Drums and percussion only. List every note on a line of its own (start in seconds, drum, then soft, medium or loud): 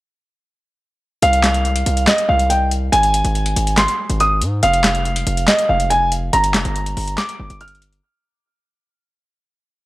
1.22 closed hi-hat medium
1.33 closed hi-hat medium
1.44 snare loud
1.44 clap medium
1.44 closed hi-hat medium
1.54 closed hi-hat soft
1.65 closed hi-hat soft
1.76 closed hi-hat medium
1.86 closed hi-hat medium
1.97 closed hi-hat medium
2.07 snare loud
2.07 clap medium
2.07 closed hi-hat medium
2.18 closed hi-hat medium
2.39 closed hi-hat medium
2.50 closed hi-hat medium
2.71 closed hi-hat medium
2.93 closed hi-hat medium
3.03 closed hi-hat medium
3.14 closed hi-hat medium
3.25 closed hi-hat soft
3.35 closed hi-hat soft
3.46 closed hi-hat medium
3.56 closed hi-hat medium
3.67 closed hi-hat medium
3.78 snare loud
3.78 clap medium
3.78 closed hi-hat medium
3.88 closed hi-hat medium
4.10 closed hi-hat medium
4.20 closed hi-hat medium
4.42 closed hi-hat medium
4.63 closed hi-hat medium
4.73 closed hi-hat medium
4.84 snare loud
4.84 clap medium
4.84 closed hi-hat medium
4.95 closed hi-hat soft
5.05 closed hi-hat soft
5.16 closed hi-hat medium
5.27 closed hi-hat medium
5.37 closed hi-hat medium
5.48 snare loud
5.48 clap medium
5.48 closed hi-hat medium
5.59 closed hi-hat medium
5.80 closed hi-hat medium
5.91 closed hi-hat medium
6.12 closed hi-hat medium
6.33 closed hi-hat medium
6.44 closed hi-hat medium
6.54 snare loud
6.54 clap medium
6.54 closed hi-hat medium
6.65 closed hi-hat soft
6.76 closed hi-hat medium
6.86 closed hi-hat medium
6.97 open hi-hat medium
7.08 closed hi-hat medium
7.18 snare loud
7.18 clap medium
7.18 closed hi-hat medium
7.29 closed hi-hat medium
7.50 closed hi-hat medium
7.61 closed hi-hat medium
7.68 closed hi-hat medium
7.75 closed hi-hat soft
7.82 closed hi-hat medium
7.93 closed hi-hat soft